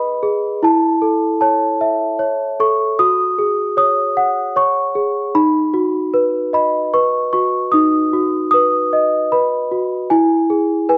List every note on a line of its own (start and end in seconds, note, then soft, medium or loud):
0.00 0.21 G#4 medium
0.00 0.63 B4 medium
0.00 0.63 D#5 medium
0.00 0.65 B5 medium
0.23 0.62 G#4 medium
0.63 2.20 E4 medium
0.63 1.40 A5 medium
1.02 2.58 A4 medium
1.41 2.18 C#5 medium
1.41 2.63 A5 medium
1.81 2.99 E5 medium
2.19 2.98 C#5 medium
2.60 2.99 A4 medium
2.60 2.97 C#6 medium
2.99 4.56 F#4 medium
2.99 3.77 D#6 medium
3.39 4.94 G#4 medium
3.77 4.55 C#5 medium
3.77 4.59 D#6 medium
4.17 5.35 F#5 medium
4.56 5.35 C#5 medium
4.56 5.38 C#6 medium
4.95 5.35 G#4 medium
5.35 6.94 D#4 medium
5.35 6.53 B5 medium
5.74 7.32 F#4 medium
6.14 6.92 B4 medium
6.53 8.13 D#5 medium
6.53 6.95 B5 medium
6.94 8.53 B4 medium
6.94 7.32 C#6 medium
7.33 8.12 F#4 medium
7.33 7.74 C#6 medium
7.72 9.32 D#4 medium
7.72 8.50 D#6 medium
8.13 9.70 F#4 medium
8.51 9.31 B4 medium
8.51 9.33 D#6 loud
8.93 10.11 D#5 medium
9.32 10.11 B4 medium
9.32 10.13 B5 medium
9.71 10.11 F#4 medium
10.10 10.98 E4 medium
10.10 10.88 G#5 medium
10.50 10.98 G#4 medium
10.89 10.98 B4 medium
10.89 10.98 G#5 medium